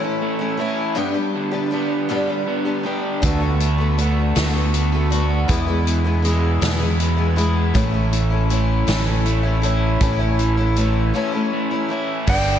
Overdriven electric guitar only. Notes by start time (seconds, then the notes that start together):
Already playing: A2 E3 A3
0.22 A3
0.59 E4
0.97 G2
1.35 D3
1.74 B3
2.10 G3
2.47 B3
2.86 G4
3.23 D3
3.61 A3
3.99 A3
4.37 D3
4.74 A3
5.12 F#4
5.50 E2
5.87 B2
6.25 G#3
6.62 E3
7.00 G#3
7.37 E4
7.75 A2
8.12 E3
8.51 A3
8.88 E3
9.26 A3
9.64 E4
10.02 A2
10.39 E3
10.78 A3
11.15 E3
11.53 A3
11.91 E4
12.28 G2